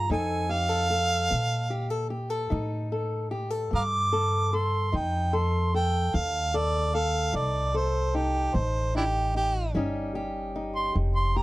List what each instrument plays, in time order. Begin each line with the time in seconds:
Already playing: steel-string acoustic guitar F4
0.10 upright bass F2, steel-string acoustic guitar F3 C4 D#4 A4, harmonica G#5
0.49 steel-string acoustic guitar G4, harmonica F5
0.69 steel-string acoustic guitar A4
0.90 steel-string acoustic guitar A4
1.30 upright bass A#2, steel-string acoustic guitar C4
1.70 steel-string acoustic guitar G4
1.90 steel-string acoustic guitar A4
2.10 steel-string acoustic guitar G4
2.30 steel-string acoustic guitar A4
2.50 upright bass A2, steel-string acoustic guitar F3 D#4
2.92 steel-string acoustic guitar A4
3.31 steel-string acoustic guitar G4
3.50 steel-string acoustic guitar A4
3.71 upright bass G2, steel-string acoustic guitar C4
3.75 harmonica F5 A#5 D6
4.13 steel-string acoustic guitar A4
4.53 steel-string acoustic guitar A4, harmonica C6
4.92 upright bass F2, steel-string acoustic guitar F3 D#4, harmonica G5
5.33 steel-string acoustic guitar A4, harmonica C6
5.74 steel-string acoustic guitar A4, harmonica G5
6.14 upright bass D#2, steel-string acoustic guitar C4, harmonica F5
6.54 steel-string acoustic guitar A4, harmonica D5
6.95 steel-string acoustic guitar A4, harmonica F5
7.33 upright bass C2, steel-string acoustic guitar F3 D#4, harmonica D5
7.74 steel-string acoustic guitar A4, harmonica C5
8.14 steel-string acoustic guitar D#4, harmonica G4
8.54 upright bass A1, steel-string acoustic guitar C4, harmonica C5
8.95 harmonica D4 E4 G4, steel-string acoustic guitar D#4
9.35 steel-string acoustic guitar D#4, harmonica G4
9.74 upright bass G1, steel-string acoustic guitar D#3 G3 C#4 D#4 G4
10.15 steel-string acoustic guitar G4
10.56 steel-string acoustic guitar D#4
10.75 harmonica C6
10.95 upright bass F1, steel-string acoustic guitar G3
11.15 harmonica C6
11.36 steel-string acoustic guitar G4, harmonica A#5